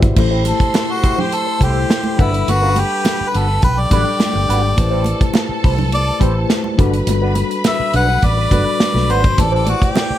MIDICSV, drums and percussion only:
0, 0, Header, 1, 2, 480
1, 0, Start_track
1, 0, Tempo, 575816
1, 141, Time_signature, 4, 2, 24, 8
1, 8489, End_track
2, 0, Start_track
2, 0, Title_t, "Drums"
2, 21, Note_on_c, 9, 36, 94
2, 21, Note_on_c, 9, 42, 47
2, 104, Note_off_c, 9, 36, 0
2, 104, Note_off_c, 9, 42, 0
2, 136, Note_on_c, 9, 49, 90
2, 138, Note_on_c, 9, 36, 104
2, 154, Note_on_c, 9, 62, 51
2, 219, Note_off_c, 9, 49, 0
2, 221, Note_off_c, 9, 36, 0
2, 238, Note_off_c, 9, 62, 0
2, 375, Note_on_c, 9, 62, 44
2, 377, Note_on_c, 9, 42, 65
2, 458, Note_off_c, 9, 62, 0
2, 460, Note_off_c, 9, 42, 0
2, 500, Note_on_c, 9, 36, 76
2, 507, Note_on_c, 9, 42, 44
2, 584, Note_off_c, 9, 36, 0
2, 590, Note_off_c, 9, 42, 0
2, 617, Note_on_c, 9, 63, 66
2, 623, Note_on_c, 9, 42, 75
2, 626, Note_on_c, 9, 38, 102
2, 701, Note_off_c, 9, 63, 0
2, 706, Note_off_c, 9, 42, 0
2, 709, Note_off_c, 9, 38, 0
2, 864, Note_on_c, 9, 36, 80
2, 864, Note_on_c, 9, 42, 63
2, 947, Note_off_c, 9, 36, 0
2, 947, Note_off_c, 9, 42, 0
2, 988, Note_on_c, 9, 64, 81
2, 1072, Note_off_c, 9, 64, 0
2, 1104, Note_on_c, 9, 42, 67
2, 1187, Note_off_c, 9, 42, 0
2, 1340, Note_on_c, 9, 36, 71
2, 1347, Note_on_c, 9, 42, 65
2, 1349, Note_on_c, 9, 62, 38
2, 1424, Note_off_c, 9, 36, 0
2, 1431, Note_off_c, 9, 42, 0
2, 1433, Note_off_c, 9, 62, 0
2, 1583, Note_on_c, 9, 63, 68
2, 1587, Note_on_c, 9, 38, 89
2, 1591, Note_on_c, 9, 42, 72
2, 1666, Note_off_c, 9, 63, 0
2, 1671, Note_off_c, 9, 38, 0
2, 1674, Note_off_c, 9, 42, 0
2, 1695, Note_on_c, 9, 63, 63
2, 1779, Note_off_c, 9, 63, 0
2, 1825, Note_on_c, 9, 36, 95
2, 1832, Note_on_c, 9, 42, 52
2, 1909, Note_off_c, 9, 36, 0
2, 1915, Note_off_c, 9, 42, 0
2, 1953, Note_on_c, 9, 42, 49
2, 2036, Note_off_c, 9, 42, 0
2, 2069, Note_on_c, 9, 42, 81
2, 2075, Note_on_c, 9, 62, 52
2, 2152, Note_off_c, 9, 42, 0
2, 2158, Note_off_c, 9, 62, 0
2, 2298, Note_on_c, 9, 62, 49
2, 2303, Note_on_c, 9, 42, 70
2, 2381, Note_off_c, 9, 62, 0
2, 2386, Note_off_c, 9, 42, 0
2, 2542, Note_on_c, 9, 63, 65
2, 2546, Note_on_c, 9, 42, 89
2, 2550, Note_on_c, 9, 38, 95
2, 2625, Note_off_c, 9, 63, 0
2, 2630, Note_off_c, 9, 42, 0
2, 2633, Note_off_c, 9, 38, 0
2, 2789, Note_on_c, 9, 42, 71
2, 2872, Note_off_c, 9, 42, 0
2, 3020, Note_on_c, 9, 42, 68
2, 3025, Note_on_c, 9, 36, 78
2, 3032, Note_on_c, 9, 64, 62
2, 3104, Note_off_c, 9, 42, 0
2, 3108, Note_off_c, 9, 36, 0
2, 3115, Note_off_c, 9, 64, 0
2, 3261, Note_on_c, 9, 36, 85
2, 3262, Note_on_c, 9, 42, 68
2, 3264, Note_on_c, 9, 62, 41
2, 3264, Note_on_c, 9, 64, 55
2, 3344, Note_off_c, 9, 36, 0
2, 3345, Note_off_c, 9, 42, 0
2, 3348, Note_off_c, 9, 62, 0
2, 3348, Note_off_c, 9, 64, 0
2, 3499, Note_on_c, 9, 63, 69
2, 3503, Note_on_c, 9, 38, 84
2, 3506, Note_on_c, 9, 42, 71
2, 3583, Note_off_c, 9, 63, 0
2, 3586, Note_off_c, 9, 38, 0
2, 3589, Note_off_c, 9, 42, 0
2, 3610, Note_on_c, 9, 63, 63
2, 3693, Note_off_c, 9, 63, 0
2, 3752, Note_on_c, 9, 42, 66
2, 3835, Note_off_c, 9, 42, 0
2, 3983, Note_on_c, 9, 36, 108
2, 3983, Note_on_c, 9, 42, 97
2, 3988, Note_on_c, 9, 62, 47
2, 4066, Note_off_c, 9, 42, 0
2, 4067, Note_off_c, 9, 36, 0
2, 4072, Note_off_c, 9, 62, 0
2, 4205, Note_on_c, 9, 62, 47
2, 4217, Note_on_c, 9, 42, 67
2, 4288, Note_off_c, 9, 62, 0
2, 4300, Note_off_c, 9, 42, 0
2, 4342, Note_on_c, 9, 36, 89
2, 4344, Note_on_c, 9, 42, 46
2, 4425, Note_off_c, 9, 36, 0
2, 4427, Note_off_c, 9, 42, 0
2, 4448, Note_on_c, 9, 63, 70
2, 4459, Note_on_c, 9, 42, 81
2, 4462, Note_on_c, 9, 38, 96
2, 4532, Note_off_c, 9, 63, 0
2, 4542, Note_off_c, 9, 42, 0
2, 4545, Note_off_c, 9, 38, 0
2, 4702, Note_on_c, 9, 46, 54
2, 4703, Note_on_c, 9, 36, 84
2, 4785, Note_off_c, 9, 46, 0
2, 4786, Note_off_c, 9, 36, 0
2, 4821, Note_on_c, 9, 64, 85
2, 4905, Note_off_c, 9, 64, 0
2, 4939, Note_on_c, 9, 42, 74
2, 4944, Note_on_c, 9, 62, 33
2, 5022, Note_off_c, 9, 42, 0
2, 5028, Note_off_c, 9, 62, 0
2, 5175, Note_on_c, 9, 36, 76
2, 5180, Note_on_c, 9, 42, 69
2, 5180, Note_on_c, 9, 62, 39
2, 5259, Note_off_c, 9, 36, 0
2, 5263, Note_off_c, 9, 62, 0
2, 5264, Note_off_c, 9, 42, 0
2, 5416, Note_on_c, 9, 38, 82
2, 5419, Note_on_c, 9, 42, 68
2, 5423, Note_on_c, 9, 63, 73
2, 5499, Note_off_c, 9, 38, 0
2, 5503, Note_off_c, 9, 42, 0
2, 5506, Note_off_c, 9, 63, 0
2, 5536, Note_on_c, 9, 63, 63
2, 5619, Note_off_c, 9, 63, 0
2, 5658, Note_on_c, 9, 36, 89
2, 5663, Note_on_c, 9, 42, 59
2, 5741, Note_off_c, 9, 36, 0
2, 5746, Note_off_c, 9, 42, 0
2, 5781, Note_on_c, 9, 42, 50
2, 5865, Note_off_c, 9, 42, 0
2, 5894, Note_on_c, 9, 42, 91
2, 5910, Note_on_c, 9, 62, 51
2, 5977, Note_off_c, 9, 42, 0
2, 5994, Note_off_c, 9, 62, 0
2, 6129, Note_on_c, 9, 62, 45
2, 6131, Note_on_c, 9, 42, 67
2, 6212, Note_off_c, 9, 62, 0
2, 6215, Note_off_c, 9, 42, 0
2, 6260, Note_on_c, 9, 42, 43
2, 6343, Note_off_c, 9, 42, 0
2, 6371, Note_on_c, 9, 42, 82
2, 6374, Note_on_c, 9, 38, 86
2, 6374, Note_on_c, 9, 63, 69
2, 6454, Note_off_c, 9, 42, 0
2, 6457, Note_off_c, 9, 63, 0
2, 6458, Note_off_c, 9, 38, 0
2, 6615, Note_on_c, 9, 42, 70
2, 6698, Note_off_c, 9, 42, 0
2, 6856, Note_on_c, 9, 42, 62
2, 6858, Note_on_c, 9, 36, 72
2, 6868, Note_on_c, 9, 62, 32
2, 6939, Note_off_c, 9, 42, 0
2, 6942, Note_off_c, 9, 36, 0
2, 6951, Note_off_c, 9, 62, 0
2, 7096, Note_on_c, 9, 36, 77
2, 7099, Note_on_c, 9, 42, 68
2, 7103, Note_on_c, 9, 62, 41
2, 7103, Note_on_c, 9, 64, 53
2, 7179, Note_off_c, 9, 36, 0
2, 7182, Note_off_c, 9, 42, 0
2, 7186, Note_off_c, 9, 62, 0
2, 7186, Note_off_c, 9, 64, 0
2, 7338, Note_on_c, 9, 38, 93
2, 7341, Note_on_c, 9, 42, 76
2, 7344, Note_on_c, 9, 63, 67
2, 7421, Note_off_c, 9, 38, 0
2, 7424, Note_off_c, 9, 42, 0
2, 7428, Note_off_c, 9, 63, 0
2, 7452, Note_on_c, 9, 63, 64
2, 7475, Note_on_c, 9, 38, 40
2, 7536, Note_off_c, 9, 63, 0
2, 7558, Note_off_c, 9, 38, 0
2, 7585, Note_on_c, 9, 42, 57
2, 7669, Note_off_c, 9, 42, 0
2, 7701, Note_on_c, 9, 42, 49
2, 7704, Note_on_c, 9, 36, 94
2, 7785, Note_off_c, 9, 42, 0
2, 7787, Note_off_c, 9, 36, 0
2, 7819, Note_on_c, 9, 42, 87
2, 7821, Note_on_c, 9, 36, 109
2, 7834, Note_on_c, 9, 62, 54
2, 7903, Note_off_c, 9, 42, 0
2, 7905, Note_off_c, 9, 36, 0
2, 7918, Note_off_c, 9, 62, 0
2, 8058, Note_on_c, 9, 42, 59
2, 8059, Note_on_c, 9, 62, 51
2, 8141, Note_off_c, 9, 42, 0
2, 8142, Note_off_c, 9, 62, 0
2, 8183, Note_on_c, 9, 36, 76
2, 8191, Note_on_c, 9, 42, 43
2, 8267, Note_off_c, 9, 36, 0
2, 8275, Note_off_c, 9, 42, 0
2, 8299, Note_on_c, 9, 63, 78
2, 8307, Note_on_c, 9, 42, 78
2, 8311, Note_on_c, 9, 38, 92
2, 8382, Note_off_c, 9, 63, 0
2, 8391, Note_off_c, 9, 42, 0
2, 8394, Note_off_c, 9, 38, 0
2, 8489, End_track
0, 0, End_of_file